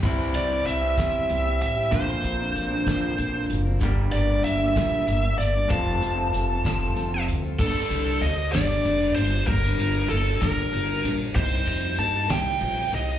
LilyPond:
<<
  \new Staff \with { instrumentName = "Lead electric guitar" } { \time 6/8 \key c \mixolydian \tempo 4. = 64 r8 d''8 e''4. e''8 | c''2~ c''8 r8 | r8 d''8 e''4. d''8 | a''2~ a''8 r8 |
\key g \minor a'4 ees''8 d''4 c''8 | bes'4 a'8 bes'4 r8 | c''4 a''8 g''4 ees''8 | }
  \new Staff \with { instrumentName = "Steel-string acoustic guitar" } { \time 6/8 \key c \mixolydian <c g c' e' g'>8 <g c' e' g'>16 <c' e' g'>8 <c' e' g'>16 <c g c' e' g'>8 <g c' e' g'>16 <c' e' g'>8 <c' e' g'>16 | <bes, d f c' d' bes'>8 <f c' d' bes'>16 <f c' d' bes'>8 <f c' d' bes'>16 <bes, d f c' d' bes'>8 <f c' d' bes'>16 <f c' d' bes'>8 <f c' d' bes'>16 | <g, d g bes d' bes'>8 <g bes d' bes'>16 <g bes d' bes'>8 <g bes d' bes'>16 <g, d g bes d' bes'>8 <g bes d' bes'>16 <g bes d' bes'>8 <g bes d' bes'>16 | <f c' f' a'>8 <f c' f' a'>16 <c' f' a'>8 <c' f' a'>16 <f c' f' a'>8 <f c' f' a'>16 <c' f' a'>8 <c' f' a'>16 |
\key g \minor <g, d g bes d' a'>4 <g bes a'>8 <g, d g bes d' a'>4 <g bes d' a'>8 | <g, d g bes d'>4 <g bes d' a'>8 <g, d g bes d'>4 <g bes d' a'>8 | <c g bes ees' bes'>4 <g bes ees' bes'>8 <c g bes ees' bes'>4 <bes ees' bes'>8 | }
  \new Staff \with { instrumentName = "Clean electric guitar" } { \clef bass \time 6/8 \key c \mixolydian <c e g c' e'>2. | <bes, d bes c' f'>2. | <g, d g bes d' g'>2. | <f, c f a c' f'>2. |
\key g \minor r2. | r2. | r2. | }
  \new Staff \with { instrumentName = "Upright bass" } { \clef bass \time 6/8 \key c \mixolydian c,8 c,8 c,8 e,8 c,8 a,,8 | bes,,8 bes,,8 bes,,8 bes,,8 bes,,8 fis,,8 | g,,8 g,,8 g,,8 bes,,8 g,,8 g,,8 | f,,8 f,,8 f,,8 f,,8 f,,8 d,8 |
\key g \minor g,,8 c,8 d,8 g,,8 f,,8 g,,8 | g,,8 g,,8 g,,8 g,,8 g,,8 bes,,8 | c,8 f,8 g,8 c,8 bes,,8 c,8 | }
  \new DrumStaff \with { instrumentName = "Drums" } \drummode { \time 6/8 <cymc bd>8 hh8 hh8 <hh bd sn>8 hh8 hh8 | <hh bd>8 hh8 hh8 <hh bd sn>8 hh8 hh8 | <hh bd>8 hh8 hh8 <hh bd sn>8 hh8 hh8 | <hh bd>8 hh8 hh8 <hh bd sn>8 hh8 hh8 |
<cymc bd>8 cymr8 cymr8 <cymr sn>8 cymr8 cymr8 | <bd cymr>8 cymr8 cymr8 <bd cymr sn>8 cymr8 cymr8 | <bd cymr>8 cymr8 cymr8 <cymr sn>8 cymr8 cymr8 | }
>>